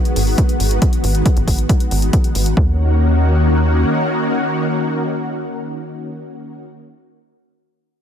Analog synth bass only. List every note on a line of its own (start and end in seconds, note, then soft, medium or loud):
0.16 0.35 G#1 medium
0.60 0.79 G#1 medium
1.04 1.22 G#1 loud
1.37 1.46 G#1 loud
1.48 1.66 G#1 medium
1.91 2.10 G#1 medium
2.35 2.54 G#1 medium
2.57 3.84 D#2 medium